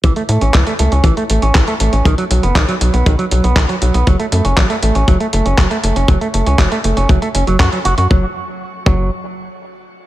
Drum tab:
HH |xxxxxxxxxxxxxxxx|xxxxxxxxxxxxxxxx|xxxxxxxxxxxxxxxx|xxxxxxxxxxxxxxxx|
CP |----x-------x---|----x-------x---|----x-------x---|----x-------x---|
BD |o---o---o---o---|o---o---o---o---|o---o---o---o---|o---o---o---o---|

HH |----------------|
CP |----------------|
BD |o-----o---------|